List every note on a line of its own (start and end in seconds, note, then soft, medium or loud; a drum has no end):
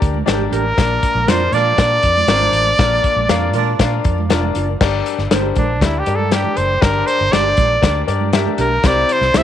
0.00 0.21 D2 medium
0.00 0.15 D4 medium
0.00 0.15 G4 medium
0.00 0.15 A#4 medium
0.00 0.16 D5 loud
0.00 kick loud
0.00 closed hi-hat medium
0.14 high conga medium
0.26 0.46 G#1 loud
0.26 0.66 D4 medium
0.26 0.41 D4 medium
0.26 0.66 G4 medium
0.26 0.41 G4 medium
0.26 0.33 A4 medium
0.26 0.41 A#4 medium
0.26 0.66 D5 medium
0.26 snare loud
0.26 closed hi-hat medium
0.26 muted conga soft
0.32 0.69 A#4 medium
0.39 muted conga soft
0.39 high conga medium
0.39 low conga medium
0.51 0.71 A1 medium
0.51 0.63 D4 medium
0.51 0.63 G4 medium
0.51 0.64 A#4 medium
0.51 1.30 A#4 loud
0.51 closed hi-hat medium
0.77 0.97 A#1 loud
0.77 1.49 A#2 medium
0.77 1.17 D4 medium
0.77 1.17 F4 medium
0.77 1.17 A#4 medium
0.77 1.17 D5 medium
0.77 kick loud
0.77 snare loud
0.77 closed hi-hat medium
0.90 muted conga soft
1.03 kick medium
1.03 closed hi-hat medium
1.15 1.25 A#1 loud
1.15 high conga soft
1.27 1.47 F2 medium
1.27 1.42 D4 medium
1.27 1.67 D4 medium
1.27 1.67 F4 medium
1.27 1.42 F4 medium
1.27 1.67 A#4 medium
1.27 1.42 A#4 medium
1.27 1.55 C5 medium
1.27 1.68 D5 medium
1.27 snare loud
1.27 closed hi-hat medium
1.27 high conga medium
1.40 muted conga soft
1.52 1.72 A#2 medium
1.52 1.89 D4 medium
1.52 1.89 F4 medium
1.52 1.89 A#4 medium
1.52 1.89 D5 loud
1.52 4.31 D5 loud
1.52 closed hi-hat medium
1.52 high conga medium
1.52 low conga medium
1.78 1.97 A#2 loud
1.78 2.18 D4 medium
1.78 2.18 F4 medium
1.78 2.18 A#4 medium
1.78 2.18 D5 medium
1.78 kick medium
1.78 snare loud
1.78 closed hi-hat medium
1.91 muted conga soft
2.03 2.22 F2 medium
2.03 kick loud
2.03 closed hi-hat medium
2.17 high conga medium
2.27 2.47 G#1 loud
2.27 2.35 C4 medium
2.27 2.42 D4 medium
2.27 2.43 F4 medium
2.27 2.68 F4 medium
2.27 2.43 A#4 loud
2.27 2.69 A#4 medium
2.27 2.68 C5 medium
2.27 snare loud
2.27 closed hi-hat medium
2.35 2.71 D4 medium
2.41 muted conga soft
2.41 high conga medium
2.41 low conga medium
2.53 2.72 A1 medium
2.53 closed hi-hat medium
2.79 2.98 A#1 loud
2.79 3.51 A#2 medium
2.79 3.18 D4 medium
2.79 3.19 F4 medium
2.79 3.19 A#4 medium
2.79 3.19 D5 medium
2.79 kick loud
2.79 snare loud
2.79 closed hi-hat medium
2.79 muted conga soft
2.79 low conga medium
2.92 muted conga soft
3.04 kick medium
3.04 closed hi-hat medium
3.16 3.26 A#1 medium
3.16 high conga soft
3.29 3.54 F2 medium
3.29 3.43 D4 medium
3.29 3.69 D4 medium
3.29 3.69 F4 medium
3.29 3.43 F4 medium
3.29 3.69 A#4 medium
3.29 3.44 A#4 medium
3.29 3.69 F5 loud
3.29 snare loud
3.29 closed hi-hat loud
3.29 muted conga soft
3.29 high conga medium
3.42 muted conga soft
3.53 3.74 A#2 loud
3.53 3.90 D4 medium
3.53 3.90 F4 medium
3.53 3.91 A#4 medium
3.53 3.90 D5 loud
3.53 closed hi-hat medium
3.53 high conga medium
3.53 low conga medium
3.79 3.99 A#2 loud
3.79 4.19 D4 medium
3.79 4.19 F4 medium
3.79 4.19 A#4 medium
3.79 4.19 F5 medium
3.79 kick medium
3.79 snare loud
3.79 closed hi-hat medium
3.93 muted conga soft
4.04 4.31 F2 loud
4.04 kick loud
4.04 closed hi-hat medium
4.18 high conga medium
4.29 4.49 F1 medium
4.29 4.44 D4 medium
4.29 4.70 D4 medium
4.29 4.44 F4 loud
4.29 4.70 F4 medium
4.29 4.70 A#4 medium
4.29 4.44 A#4 loud
4.29 4.70 D5 loud
4.29 snare loud
4.29 closed hi-hat medium
4.29 muted conga soft
4.43 high conga medium
4.43 low conga medium
4.54 4.75 F#1 medium
4.54 4.66 D4 medium
4.54 4.66 F4 medium
4.54 4.67 A#4 medium
4.54 closed hi-hat medium
4.81 5.00 G1 medium
4.81 5.53 G2 medium
4.81 5.21 D4 loud
4.81 5.20 G4 loud
4.81 5.20 A#4 medium
4.81 5.21 D5 loud
4.81 kick loud
4.81 snare loud
4.81 crash medium
5.06 closed hi-hat medium
5.18 5.28 G1 medium
5.18 snare soft
5.31 5.50 G1 medium
5.31 5.45 D4 medium
5.31 5.71 D4 medium
5.31 5.71 G4 medium
5.31 5.45 G4 medium
5.31 5.71 A#4 medium
5.31 5.46 A#4 medium
5.31 5.71 C5 loud
5.31 snare loud
5.31 closed hi-hat medium
5.31 muted conga soft
5.31 high conga medium
5.55 5.81 A#1 medium
5.55 5.84 D4 medium
5.55 kick medium
5.55 closed hi-hat medium
5.55 high conga medium
5.55 low conga medium
5.81 6.00 D2 medium
5.81 6.01 D4 medium
5.81 6.01 E4 medium
5.81 6.01 G4 medium
5.81 6.01 A#4 medium
5.81 6.02 D5 medium
5.81 kick medium
5.81 snare loud
5.81 closed hi-hat medium
5.81 muted conga soft
5.99 6.17 G4 medium
6.06 6.45 G2 medium
6.06 6.27 D4 medium
6.06 6.27 G4 medium
6.06 6.27 A#4 medium
6.06 6.27 D5 medium
6.06 closed hi-hat medium
6.15 6.34 A4 medium
6.15 high conga medium
6.31 6.45 D4 medium
6.31 6.71 D4 medium
6.31 6.71 G4 medium
6.31 6.46 G4 medium
6.31 6.59 G4 medium
6.31 6.71 A#4 medium
6.31 6.46 A#4 medium
6.31 6.71 D5 medium
6.31 snare loud
6.31 closed hi-hat medium
6.31 muted conga soft
6.44 muted conga soft
6.44 high conga medium
6.44 low conga medium
6.57 6.76 F#1 medium
6.57 6.83 C5 medium
6.57 closed hi-hat medium
6.81 7.01 G1 loud
6.81 7.54 G2 medium
6.81 7.21 D4 medium
6.81 7.21 G4 medium
6.81 7.21 A#4 medium
6.81 7.08 A#4 loud
6.81 7.22 D5 loud
6.81 kick loud
6.81 snare loud
6.81 closed hi-hat medium
7.07 7.34 C5 loud
7.07 closed hi-hat medium
7.21 7.30 G1 medium
7.32 7.52 G1 medium
7.32 7.46 D4 medium
7.32 7.72 D4 medium
7.32 7.72 G4 medium
7.32 7.47 G4 medium
7.32 7.72 A#4 medium
7.32 7.47 A#4 medium
7.32 8.08 D5 loud
7.32 7.72 D5 medium
7.32 snare loud
7.32 closed hi-hat medium
7.32 high conga medium
7.57 7.77 A#1 medium
7.57 kick medium
7.57 closed hi-hat medium
7.57 high conga medium
7.57 low conga medium
7.82 8.02 D2 loud
7.82 8.02 D4 medium
7.82 8.02 G4 medium
7.82 8.02 A#4 medium
7.82 8.02 D5 medium
7.82 kick medium
7.82 snare loud
7.82 closed hi-hat medium
7.96 muted conga soft
8.07 8.46 G2 medium
8.07 8.28 D4 medium
8.07 8.28 G4 medium
8.07 8.28 A#4 medium
8.07 8.28 D5 medium
8.07 closed hi-hat medium
8.21 high conga medium
8.33 8.47 D4 medium
8.33 8.73 D4 medium
8.33 8.73 G4 medium
8.33 8.47 G4 medium
8.33 8.73 A#4 medium
8.33 8.48 A#4 medium
8.33 8.73 E5 loud
8.33 snare loud
8.33 closed hi-hat medium
8.46 muted conga soft
8.46 high conga medium
8.46 low conga medium
8.58 8.78 B1 medium
8.58 8.69 D4 medium
8.58 8.70 G4 medium
8.58 8.70 A#4 medium
8.58 8.88 A#4 medium
8.58 closed hi-hat medium
8.83 9.03 C2 loud
8.83 9.43 C3 medium
8.83 9.24 C4 medium
8.83 9.24 E4 medium
8.83 9.24 G4 medium
8.83 9.24 C5 loud
8.83 9.14 D5 loud
8.83 kick loud
8.83 snare loud
8.83 closed hi-hat medium
8.96 muted conga soft
9.09 9.39 C5 loud
9.09 closed hi-hat medium
9.21 9.31 C2 loud
9.21 snare soft
9.33 9.43 C2 medium
9.33 9.43 C4 medium
9.33 9.43 E4 medium
9.33 9.43 G4 medium
9.33 9.43 C5 medium
9.33 9.43 E5 loud
9.33 snare loud
9.33 closed hi-hat loud
9.33 high conga medium